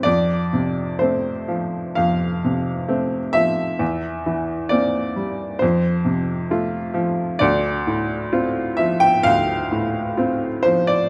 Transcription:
X:1
M:4/4
L:1/16
Q:1/4=66
K:F
V:1 name="Upright piano"
d4 c4 f6 e2- | e4 d4 c4 z4 | d6 e g f6 c d |]
V:2 name="Upright piano" clef=bass
F,,2 C,2 [A,C]2 F,2 F,,2 C,2 [A,C]2 F,2 | E,,2 E,2 [B,C]2 G,2 F,,2 C,2 [A,F]2 F,2 | D,,2 A,,2 [CF]2 F,2 D,,2 A,,2 [CF]2 F,2 |]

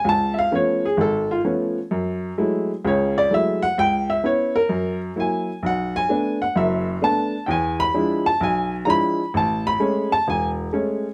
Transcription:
X:1
M:4/4
L:1/8
Q:"Swing" 1/4=129
K:A
V:1 name="Upright piano"
a [e^e] c G A ^E z2 | z4 c d e f | =g e c _B2 z ^g2 | f g2 f e z a2 |
[=g^g] b2 a g z [_b=b]2 | a b2 a g z3 |]
V:2 name="Upright piano"
C,,2 [^E,A,B,C] z G,,,2 [E,A,B,C] z | F,,2 [F,G,A,E] z [C,,C,]2 [F,G,A,E] z | C,,2 [B,CE] z F,,2 [F,^A,E] z | B,,,2 [A,B,D] z [F,,,F,,]2 [A,B,D] z |
E,,2 [=F,G,DE] z B,,,2 [F,G,DE] z | A,,,2 [G,A,C] z E,,,2 [G,A,C] z |]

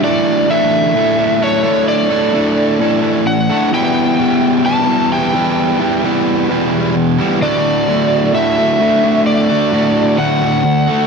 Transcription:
X:1
M:4/4
L:1/16
Q:1/4=65
K:D
V:1 name="Electric slide guitar"
d2 e4 c2 d6 f2 | g4 a2 g4 z6 | d4 e4 d4 f4 |]
V:2 name="Distorted electric guitar"
[A,,E,A,DEA]2 [A,DEA]2 [A,,E,A,DEA] [A,DEA] [A,DEA] [A,DEA]2 [A,DEA] [A,DEA]2 [A,,E,A,DEA] [A,DEA]2 [A,DEA] | [E,,B,,E,G,B,E]2 [E,G,B,E]2 [E,,B,,E,G,B,E] [E,G,B,E] [E,G,B,E] [E,G,B,E]2 [E,G,B,E] [E,G,B,E]2 [E,,B,,E,G,B,E] [E,G,B,E]2 [E,G,B,E] | [D,,A,,D,A,F]2 [A,,D,A,F]2 [D,,A,,D,A,F] [D,A,F] [A,,D,A,F] [D,A,F]2 [D,A,F] [A,,D,A,F]2 [D,,A,,D,A,F] [D,A,F]2 [D,A,F] |]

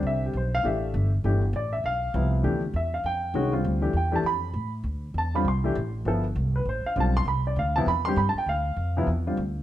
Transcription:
X:1
M:4/4
L:1/8
Q:"Swing" 1/4=199
K:Gmix
V:1 name="Grand piano"
e G c f e3 z | z2 d e f3 z | z2 e f g3 z | z2 g a b3 z |
z2 a b c'3 z | z3 B c f a c' | b d f a b c' (3b a g | f4 z4 |]
V:2 name="Grand piano"
[D,G,CD]2 z2 [E,A,DG]3 z | [E,A,DG] z4 z [C,F,B,E]2 | [E,A,DG] z4 z [_E,_A,^C^F] [D,G,=C=F]- | [D,G,CF] [E,A,DG] z [E,A,DG] z4 |
z3 [D,G,CF] z [E,A,DG] z2 | [F,B,EA] z4 z [D,G,CF] z | z3 [C,F,B,E] z [D,G,CG] z2 | z3 [C,F,B,E] z [D,G,CF] z2 |]
V:3 name="Upright bass" clef=bass
C,,2 B,,,2 A,,,2 G,,,2 | G,,,2 A,,,2 B,,,2 C,,2 | D,,2 E,,2 F,,2 C,,2 | D,,2 E,,2 F,,2 A,,2 |
D,,2 E,,2 C,,2 A,,,2 | G,,,2 C,,2 A,,, z B,,,2 | C,,2 D,,2 E,,2 G,, z | D,,2 F,,2 E,,2 D,,2 |]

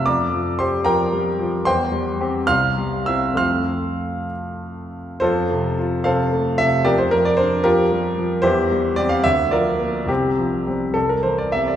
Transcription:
X:1
M:6/8
L:1/16
Q:3/8=73
K:F
V:1 name="Grand piano"
[dbd']4 [cc']2 [Bgb]6 | [cgc']6 [fc'f']4 [ee']2 | [fc'f']6 z6 | [FAc]6 [Acf]4 e2 |
[GBd] c B d c2 [FGB]6 | [EGc]4 d f e2 [FBd]4 | [CG]6 A B c d e d |]
V:2 name="Grand piano" clef=bass
F,,2 F,2 G2 F,2 G,2 F,2 | E,,2 G,2 [CG]2 C,,2 G,2 [CE]2 | [F,,A,CF]12 | F,,2 C,2 F2 C,2 A,2 C,2 |
F,,2 F,2 D2 F,2 G,2 F,2 | E,,2 G,2 [G,C]2 D,,2 F,2 B,2 | C,,2 F,2 [G,C]2 C,,2 E,2 [G,C]2 |]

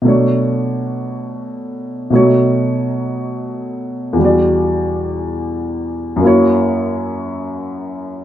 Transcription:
X:1
M:4/4
L:1/8
Q:"Swing" 1/4=58
K:Bm
V:1 name="Grand piano"
[B,,F,A,Dc]4 [B,,F,A,^Dc]4 | [E,,E,G,Fd]4 [F,,F,^A,Ec]4 |]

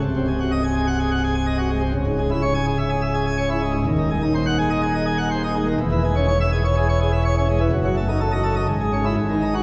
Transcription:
X:1
M:4/4
L:1/16
Q:1/4=125
K:C#m
V:1 name="Pipe organ"
^B,,, ^B,, G, F d g G f G f G g d F G, B,, | C,, G,, G, E c g G e G e G g c E G, G,, | D,, D, G, D ^B f G d G d G f B D G, D, | E,, E, G, C c e G c G c G e c C G, E, |
F,, F, A, D A d A d G,, G, C E G,, D, D F |]
V:2 name="Pipe organ" clef=bass
^B,,,,16 | C,,,16 | D,,,16 | E,,,16 |
F,,,8 G,,,4 G,,,4 |]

